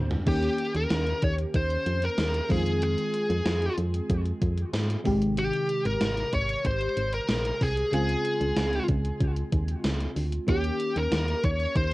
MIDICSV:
0, 0, Header, 1, 5, 480
1, 0, Start_track
1, 0, Tempo, 638298
1, 201, Time_signature, 4, 2, 24, 8
1, 8976, End_track
2, 0, Start_track
2, 0, Title_t, "Lead electric guitar"
2, 0, Program_c, 0, 29
2, 211, Note_on_c, 0, 67, 85
2, 541, Note_off_c, 0, 67, 0
2, 573, Note_on_c, 0, 70, 91
2, 902, Note_off_c, 0, 70, 0
2, 933, Note_on_c, 0, 73, 96
2, 996, Note_off_c, 0, 73, 0
2, 1173, Note_on_c, 0, 72, 100
2, 1534, Note_on_c, 0, 70, 90
2, 1538, Note_off_c, 0, 72, 0
2, 1863, Note_off_c, 0, 70, 0
2, 1892, Note_on_c, 0, 68, 73
2, 2124, Note_off_c, 0, 68, 0
2, 2133, Note_on_c, 0, 68, 78
2, 2817, Note_off_c, 0, 68, 0
2, 4053, Note_on_c, 0, 67, 86
2, 4382, Note_off_c, 0, 67, 0
2, 4409, Note_on_c, 0, 70, 90
2, 4768, Note_off_c, 0, 70, 0
2, 4771, Note_on_c, 0, 73, 95
2, 5010, Note_off_c, 0, 73, 0
2, 5013, Note_on_c, 0, 72, 98
2, 5367, Note_off_c, 0, 72, 0
2, 5370, Note_on_c, 0, 70, 96
2, 5731, Note_on_c, 0, 68, 77
2, 5736, Note_off_c, 0, 70, 0
2, 5950, Note_off_c, 0, 68, 0
2, 5971, Note_on_c, 0, 68, 79
2, 6656, Note_off_c, 0, 68, 0
2, 7890, Note_on_c, 0, 67, 88
2, 8250, Note_on_c, 0, 70, 87
2, 8256, Note_off_c, 0, 67, 0
2, 8608, Note_off_c, 0, 70, 0
2, 8611, Note_on_c, 0, 73, 101
2, 8845, Note_off_c, 0, 73, 0
2, 8848, Note_on_c, 0, 72, 95
2, 8976, Note_off_c, 0, 72, 0
2, 8976, End_track
3, 0, Start_track
3, 0, Title_t, "FM electric piano"
3, 0, Program_c, 1, 5
3, 0, Control_c, 1, 64, 127
3, 192, Note_on_c, 1, 51, 63
3, 198, Note_on_c, 1, 58, 56
3, 204, Note_on_c, 1, 61, 59
3, 209, Note_on_c, 1, 67, 69
3, 211, Control_c, 1, 64, 0
3, 328, Control_c, 1, 64, 127
3, 1846, Note_off_c, 1, 51, 0
3, 1849, Note_off_c, 1, 58, 0
3, 1852, Note_off_c, 1, 61, 0
3, 1855, Note_off_c, 1, 67, 0
3, 1871, Note_on_c, 1, 51, 68
3, 1877, Note_on_c, 1, 56, 58
3, 1882, Note_on_c, 1, 60, 58
3, 1888, Note_on_c, 1, 65, 72
3, 1889, Control_c, 1, 64, 0
3, 2005, Control_c, 1, 64, 127
3, 3766, Note_off_c, 1, 51, 0
3, 3769, Note_off_c, 1, 56, 0
3, 3772, Note_off_c, 1, 60, 0
3, 3774, Note_off_c, 1, 65, 0
3, 3791, Note_on_c, 1, 51, 80
3, 3796, Note_on_c, 1, 56, 73
3, 3803, Note_on_c, 1, 48, 72
3, 3808, Note_on_c, 1, 67, 87
3, 3809, Control_c, 1, 64, 0
3, 3939, Control_c, 1, 64, 127
3, 5686, Note_off_c, 1, 51, 0
3, 5689, Note_off_c, 1, 56, 0
3, 5692, Note_off_c, 1, 48, 0
3, 5694, Note_off_c, 1, 67, 0
3, 5952, Note_on_c, 1, 49, 64
3, 5958, Note_on_c, 1, 56, 57
3, 5964, Note_on_c, 1, 60, 58
3, 5970, Note_on_c, 1, 65, 70
3, 5971, Control_c, 1, 64, 0
3, 6083, Control_c, 1, 64, 127
3, 7846, Note_off_c, 1, 49, 0
3, 7850, Note_off_c, 1, 56, 0
3, 7853, Note_off_c, 1, 60, 0
3, 7856, Note_off_c, 1, 65, 0
3, 7871, Note_on_c, 1, 51, 63
3, 7877, Note_on_c, 1, 58, 58
3, 7883, Note_on_c, 1, 61, 59
3, 7889, Note_on_c, 1, 67, 68
3, 7892, Control_c, 1, 64, 0
3, 8021, Control_c, 1, 64, 127
3, 8976, Note_off_c, 1, 51, 0
3, 8976, Note_off_c, 1, 58, 0
3, 8976, Note_off_c, 1, 61, 0
3, 8976, Note_off_c, 1, 67, 0
3, 8976, End_track
4, 0, Start_track
4, 0, Title_t, "FM bass"
4, 0, Program_c, 2, 39
4, 0, Note_on_c, 2, 38, 85
4, 134, Note_off_c, 2, 38, 0
4, 201, Note_on_c, 2, 39, 110
4, 374, Note_off_c, 2, 39, 0
4, 560, Note_on_c, 2, 39, 91
4, 647, Note_off_c, 2, 39, 0
4, 680, Note_on_c, 2, 39, 108
4, 853, Note_off_c, 2, 39, 0
4, 922, Note_on_c, 2, 39, 94
4, 1095, Note_off_c, 2, 39, 0
4, 1160, Note_on_c, 2, 39, 100
4, 1333, Note_off_c, 2, 39, 0
4, 1401, Note_on_c, 2, 41, 85
4, 1574, Note_off_c, 2, 41, 0
4, 1641, Note_on_c, 2, 39, 96
4, 1814, Note_off_c, 2, 39, 0
4, 1880, Note_on_c, 2, 41, 91
4, 2226, Note_off_c, 2, 41, 0
4, 2480, Note_on_c, 2, 41, 99
4, 2567, Note_off_c, 2, 41, 0
4, 2601, Note_on_c, 2, 41, 106
4, 2774, Note_off_c, 2, 41, 0
4, 2841, Note_on_c, 2, 41, 94
4, 3013, Note_off_c, 2, 41, 0
4, 3080, Note_on_c, 2, 41, 105
4, 3253, Note_off_c, 2, 41, 0
4, 3322, Note_on_c, 2, 41, 94
4, 3494, Note_off_c, 2, 41, 0
4, 3559, Note_on_c, 2, 44, 91
4, 3732, Note_off_c, 2, 44, 0
4, 3801, Note_on_c, 2, 32, 87
4, 4147, Note_off_c, 2, 32, 0
4, 4402, Note_on_c, 2, 32, 95
4, 4488, Note_off_c, 2, 32, 0
4, 4522, Note_on_c, 2, 32, 95
4, 4694, Note_off_c, 2, 32, 0
4, 4762, Note_on_c, 2, 32, 93
4, 4934, Note_off_c, 2, 32, 0
4, 5000, Note_on_c, 2, 32, 101
4, 5173, Note_off_c, 2, 32, 0
4, 5241, Note_on_c, 2, 32, 90
4, 5414, Note_off_c, 2, 32, 0
4, 5482, Note_on_c, 2, 34, 89
4, 5655, Note_off_c, 2, 34, 0
4, 5724, Note_on_c, 2, 36, 89
4, 5895, Note_off_c, 2, 36, 0
4, 5962, Note_on_c, 2, 37, 98
4, 6135, Note_off_c, 2, 37, 0
4, 6321, Note_on_c, 2, 37, 97
4, 6408, Note_off_c, 2, 37, 0
4, 6443, Note_on_c, 2, 37, 93
4, 6615, Note_off_c, 2, 37, 0
4, 6682, Note_on_c, 2, 37, 101
4, 6854, Note_off_c, 2, 37, 0
4, 6921, Note_on_c, 2, 37, 97
4, 7094, Note_off_c, 2, 37, 0
4, 7162, Note_on_c, 2, 39, 88
4, 7334, Note_off_c, 2, 39, 0
4, 7400, Note_on_c, 2, 37, 88
4, 7573, Note_off_c, 2, 37, 0
4, 7641, Note_on_c, 2, 38, 79
4, 7814, Note_off_c, 2, 38, 0
4, 7880, Note_on_c, 2, 39, 103
4, 8053, Note_off_c, 2, 39, 0
4, 8242, Note_on_c, 2, 39, 92
4, 8328, Note_off_c, 2, 39, 0
4, 8359, Note_on_c, 2, 39, 105
4, 8533, Note_off_c, 2, 39, 0
4, 8602, Note_on_c, 2, 39, 97
4, 8774, Note_off_c, 2, 39, 0
4, 8841, Note_on_c, 2, 39, 101
4, 8976, Note_off_c, 2, 39, 0
4, 8976, End_track
5, 0, Start_track
5, 0, Title_t, "Drums"
5, 80, Note_on_c, 9, 43, 78
5, 156, Note_off_c, 9, 43, 0
5, 200, Note_on_c, 9, 42, 81
5, 200, Note_on_c, 9, 49, 87
5, 201, Note_on_c, 9, 36, 104
5, 275, Note_off_c, 9, 42, 0
5, 275, Note_off_c, 9, 49, 0
5, 276, Note_off_c, 9, 36, 0
5, 319, Note_on_c, 9, 42, 47
5, 395, Note_off_c, 9, 42, 0
5, 438, Note_on_c, 9, 42, 71
5, 513, Note_off_c, 9, 42, 0
5, 560, Note_on_c, 9, 42, 49
5, 635, Note_off_c, 9, 42, 0
5, 679, Note_on_c, 9, 38, 108
5, 680, Note_on_c, 9, 42, 88
5, 754, Note_off_c, 9, 38, 0
5, 756, Note_off_c, 9, 42, 0
5, 802, Note_on_c, 9, 42, 45
5, 877, Note_off_c, 9, 42, 0
5, 918, Note_on_c, 9, 42, 69
5, 922, Note_on_c, 9, 36, 91
5, 994, Note_off_c, 9, 42, 0
5, 997, Note_off_c, 9, 36, 0
5, 1042, Note_on_c, 9, 42, 51
5, 1117, Note_off_c, 9, 42, 0
5, 1160, Note_on_c, 9, 36, 90
5, 1160, Note_on_c, 9, 42, 84
5, 1235, Note_off_c, 9, 42, 0
5, 1236, Note_off_c, 9, 36, 0
5, 1280, Note_on_c, 9, 42, 49
5, 1355, Note_off_c, 9, 42, 0
5, 1401, Note_on_c, 9, 42, 70
5, 1476, Note_off_c, 9, 42, 0
5, 1520, Note_on_c, 9, 42, 51
5, 1595, Note_off_c, 9, 42, 0
5, 1639, Note_on_c, 9, 42, 74
5, 1640, Note_on_c, 9, 38, 111
5, 1714, Note_off_c, 9, 42, 0
5, 1715, Note_off_c, 9, 38, 0
5, 1762, Note_on_c, 9, 42, 54
5, 1837, Note_off_c, 9, 42, 0
5, 1880, Note_on_c, 9, 36, 92
5, 1881, Note_on_c, 9, 46, 64
5, 1955, Note_off_c, 9, 36, 0
5, 1956, Note_off_c, 9, 46, 0
5, 2002, Note_on_c, 9, 42, 53
5, 2077, Note_off_c, 9, 42, 0
5, 2120, Note_on_c, 9, 42, 83
5, 2195, Note_off_c, 9, 42, 0
5, 2240, Note_on_c, 9, 42, 47
5, 2315, Note_off_c, 9, 42, 0
5, 2359, Note_on_c, 9, 42, 70
5, 2434, Note_off_c, 9, 42, 0
5, 2481, Note_on_c, 9, 42, 49
5, 2556, Note_off_c, 9, 42, 0
5, 2599, Note_on_c, 9, 38, 107
5, 2600, Note_on_c, 9, 42, 89
5, 2674, Note_off_c, 9, 38, 0
5, 2676, Note_off_c, 9, 42, 0
5, 2722, Note_on_c, 9, 42, 47
5, 2797, Note_off_c, 9, 42, 0
5, 2839, Note_on_c, 9, 42, 68
5, 2915, Note_off_c, 9, 42, 0
5, 2963, Note_on_c, 9, 42, 52
5, 3038, Note_off_c, 9, 42, 0
5, 3081, Note_on_c, 9, 36, 94
5, 3081, Note_on_c, 9, 42, 88
5, 3156, Note_off_c, 9, 36, 0
5, 3157, Note_off_c, 9, 42, 0
5, 3200, Note_on_c, 9, 42, 48
5, 3275, Note_off_c, 9, 42, 0
5, 3322, Note_on_c, 9, 36, 86
5, 3322, Note_on_c, 9, 42, 76
5, 3397, Note_off_c, 9, 36, 0
5, 3397, Note_off_c, 9, 42, 0
5, 3441, Note_on_c, 9, 42, 53
5, 3516, Note_off_c, 9, 42, 0
5, 3560, Note_on_c, 9, 42, 75
5, 3561, Note_on_c, 9, 38, 111
5, 3636, Note_off_c, 9, 38, 0
5, 3636, Note_off_c, 9, 42, 0
5, 3684, Note_on_c, 9, 42, 55
5, 3759, Note_off_c, 9, 42, 0
5, 3801, Note_on_c, 9, 36, 97
5, 3803, Note_on_c, 9, 46, 67
5, 3876, Note_off_c, 9, 36, 0
5, 3878, Note_off_c, 9, 46, 0
5, 3923, Note_on_c, 9, 42, 54
5, 3998, Note_off_c, 9, 42, 0
5, 4041, Note_on_c, 9, 42, 83
5, 4116, Note_off_c, 9, 42, 0
5, 4161, Note_on_c, 9, 42, 47
5, 4236, Note_off_c, 9, 42, 0
5, 4279, Note_on_c, 9, 42, 68
5, 4355, Note_off_c, 9, 42, 0
5, 4401, Note_on_c, 9, 42, 52
5, 4477, Note_off_c, 9, 42, 0
5, 4519, Note_on_c, 9, 38, 115
5, 4520, Note_on_c, 9, 42, 91
5, 4594, Note_off_c, 9, 38, 0
5, 4595, Note_off_c, 9, 42, 0
5, 4642, Note_on_c, 9, 42, 49
5, 4718, Note_off_c, 9, 42, 0
5, 4759, Note_on_c, 9, 42, 69
5, 4762, Note_on_c, 9, 36, 87
5, 4834, Note_off_c, 9, 42, 0
5, 4837, Note_off_c, 9, 36, 0
5, 4883, Note_on_c, 9, 42, 52
5, 4958, Note_off_c, 9, 42, 0
5, 5001, Note_on_c, 9, 36, 90
5, 5001, Note_on_c, 9, 42, 87
5, 5076, Note_off_c, 9, 36, 0
5, 5076, Note_off_c, 9, 42, 0
5, 5120, Note_on_c, 9, 42, 47
5, 5195, Note_off_c, 9, 42, 0
5, 5241, Note_on_c, 9, 42, 72
5, 5316, Note_off_c, 9, 42, 0
5, 5359, Note_on_c, 9, 42, 52
5, 5434, Note_off_c, 9, 42, 0
5, 5479, Note_on_c, 9, 42, 78
5, 5480, Note_on_c, 9, 38, 113
5, 5554, Note_off_c, 9, 42, 0
5, 5555, Note_off_c, 9, 38, 0
5, 5603, Note_on_c, 9, 42, 57
5, 5678, Note_off_c, 9, 42, 0
5, 5723, Note_on_c, 9, 36, 83
5, 5723, Note_on_c, 9, 46, 69
5, 5798, Note_off_c, 9, 46, 0
5, 5799, Note_off_c, 9, 36, 0
5, 5843, Note_on_c, 9, 42, 55
5, 5919, Note_off_c, 9, 42, 0
5, 5963, Note_on_c, 9, 42, 86
5, 6038, Note_off_c, 9, 42, 0
5, 6082, Note_on_c, 9, 42, 51
5, 6157, Note_off_c, 9, 42, 0
5, 6201, Note_on_c, 9, 42, 73
5, 6276, Note_off_c, 9, 42, 0
5, 6322, Note_on_c, 9, 42, 51
5, 6398, Note_off_c, 9, 42, 0
5, 6440, Note_on_c, 9, 38, 108
5, 6442, Note_on_c, 9, 42, 92
5, 6516, Note_off_c, 9, 38, 0
5, 6517, Note_off_c, 9, 42, 0
5, 6564, Note_on_c, 9, 42, 48
5, 6639, Note_off_c, 9, 42, 0
5, 6680, Note_on_c, 9, 42, 70
5, 6682, Note_on_c, 9, 36, 92
5, 6755, Note_off_c, 9, 42, 0
5, 6757, Note_off_c, 9, 36, 0
5, 6803, Note_on_c, 9, 42, 52
5, 6878, Note_off_c, 9, 42, 0
5, 6921, Note_on_c, 9, 36, 97
5, 6921, Note_on_c, 9, 42, 82
5, 6996, Note_off_c, 9, 36, 0
5, 6996, Note_off_c, 9, 42, 0
5, 7041, Note_on_c, 9, 42, 51
5, 7116, Note_off_c, 9, 42, 0
5, 7161, Note_on_c, 9, 42, 75
5, 7162, Note_on_c, 9, 36, 88
5, 7236, Note_off_c, 9, 42, 0
5, 7237, Note_off_c, 9, 36, 0
5, 7280, Note_on_c, 9, 42, 50
5, 7355, Note_off_c, 9, 42, 0
5, 7399, Note_on_c, 9, 42, 78
5, 7400, Note_on_c, 9, 38, 117
5, 7474, Note_off_c, 9, 42, 0
5, 7475, Note_off_c, 9, 38, 0
5, 7522, Note_on_c, 9, 42, 57
5, 7597, Note_off_c, 9, 42, 0
5, 7641, Note_on_c, 9, 46, 69
5, 7716, Note_off_c, 9, 46, 0
5, 7762, Note_on_c, 9, 42, 56
5, 7837, Note_off_c, 9, 42, 0
5, 7879, Note_on_c, 9, 42, 88
5, 7881, Note_on_c, 9, 36, 105
5, 7955, Note_off_c, 9, 42, 0
5, 7956, Note_off_c, 9, 36, 0
5, 8000, Note_on_c, 9, 42, 50
5, 8075, Note_off_c, 9, 42, 0
5, 8119, Note_on_c, 9, 42, 72
5, 8195, Note_off_c, 9, 42, 0
5, 8242, Note_on_c, 9, 42, 50
5, 8317, Note_off_c, 9, 42, 0
5, 8360, Note_on_c, 9, 38, 112
5, 8361, Note_on_c, 9, 42, 91
5, 8435, Note_off_c, 9, 38, 0
5, 8437, Note_off_c, 9, 42, 0
5, 8483, Note_on_c, 9, 42, 46
5, 8558, Note_off_c, 9, 42, 0
5, 8600, Note_on_c, 9, 42, 66
5, 8602, Note_on_c, 9, 36, 93
5, 8675, Note_off_c, 9, 42, 0
5, 8678, Note_off_c, 9, 36, 0
5, 8722, Note_on_c, 9, 42, 52
5, 8798, Note_off_c, 9, 42, 0
5, 8841, Note_on_c, 9, 36, 91
5, 8841, Note_on_c, 9, 42, 88
5, 8916, Note_off_c, 9, 36, 0
5, 8916, Note_off_c, 9, 42, 0
5, 8976, End_track
0, 0, End_of_file